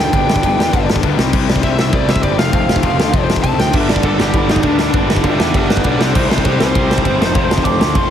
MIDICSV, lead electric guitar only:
0, 0, Header, 1, 2, 480
1, 0, Start_track
1, 0, Tempo, 301054
1, 210, Time_signature, 4, 2, 24, 8
1, 12916, End_track
2, 0, Start_track
2, 0, Title_t, "Lead electric guitar"
2, 0, Program_c, 0, 29
2, 0, Note_on_c, 0, 79, 110
2, 1373, Note_off_c, 0, 79, 0
2, 2616, Note_on_c, 0, 76, 105
2, 2845, Note_off_c, 0, 76, 0
2, 2879, Note_on_c, 0, 76, 93
2, 3094, Note_off_c, 0, 76, 0
2, 3100, Note_on_c, 0, 74, 99
2, 3338, Note_off_c, 0, 74, 0
2, 3338, Note_on_c, 0, 76, 106
2, 3547, Note_off_c, 0, 76, 0
2, 3554, Note_on_c, 0, 74, 96
2, 3806, Note_off_c, 0, 74, 0
2, 3806, Note_on_c, 0, 77, 104
2, 5202, Note_off_c, 0, 77, 0
2, 5465, Note_on_c, 0, 81, 101
2, 5708, Note_off_c, 0, 81, 0
2, 5741, Note_on_c, 0, 79, 97
2, 5966, Note_off_c, 0, 79, 0
2, 5981, Note_on_c, 0, 76, 93
2, 6205, Note_off_c, 0, 76, 0
2, 6205, Note_on_c, 0, 74, 104
2, 6438, Note_off_c, 0, 74, 0
2, 6447, Note_on_c, 0, 69, 95
2, 6679, Note_off_c, 0, 69, 0
2, 6714, Note_on_c, 0, 67, 88
2, 6931, Note_off_c, 0, 67, 0
2, 6931, Note_on_c, 0, 64, 102
2, 7161, Note_off_c, 0, 64, 0
2, 7185, Note_on_c, 0, 63, 98
2, 7417, Note_off_c, 0, 63, 0
2, 7417, Note_on_c, 0, 62, 98
2, 7637, Note_off_c, 0, 62, 0
2, 7656, Note_on_c, 0, 62, 105
2, 7883, Note_off_c, 0, 62, 0
2, 8359, Note_on_c, 0, 67, 101
2, 8366, Note_on_c, 0, 76, 107
2, 8554, Note_off_c, 0, 67, 0
2, 8573, Note_on_c, 0, 67, 84
2, 8576, Note_off_c, 0, 76, 0
2, 8595, Note_on_c, 0, 76, 98
2, 8811, Note_off_c, 0, 67, 0
2, 8833, Note_off_c, 0, 76, 0
2, 8838, Note_on_c, 0, 67, 89
2, 8853, Note_on_c, 0, 76, 101
2, 9056, Note_on_c, 0, 71, 76
2, 9064, Note_off_c, 0, 67, 0
2, 9071, Note_off_c, 0, 76, 0
2, 9071, Note_on_c, 0, 74, 91
2, 9289, Note_off_c, 0, 71, 0
2, 9308, Note_on_c, 0, 71, 79
2, 9311, Note_off_c, 0, 74, 0
2, 9327, Note_on_c, 0, 74, 94
2, 9518, Note_off_c, 0, 74, 0
2, 9525, Note_off_c, 0, 71, 0
2, 9531, Note_on_c, 0, 69, 89
2, 9538, Note_on_c, 0, 74, 101
2, 9765, Note_off_c, 0, 69, 0
2, 9784, Note_off_c, 0, 74, 0
2, 9784, Note_on_c, 0, 69, 87
2, 9800, Note_on_c, 0, 72, 92
2, 10001, Note_off_c, 0, 69, 0
2, 10010, Note_off_c, 0, 72, 0
2, 10020, Note_on_c, 0, 69, 85
2, 10029, Note_on_c, 0, 72, 99
2, 10250, Note_off_c, 0, 69, 0
2, 10269, Note_on_c, 0, 69, 87
2, 10270, Note_off_c, 0, 72, 0
2, 10286, Note_on_c, 0, 72, 100
2, 10499, Note_off_c, 0, 72, 0
2, 10500, Note_off_c, 0, 69, 0
2, 10519, Note_on_c, 0, 72, 105
2, 11921, Note_off_c, 0, 72, 0
2, 12188, Note_on_c, 0, 86, 110
2, 12665, Note_off_c, 0, 86, 0
2, 12704, Note_on_c, 0, 84, 110
2, 12916, Note_off_c, 0, 84, 0
2, 12916, End_track
0, 0, End_of_file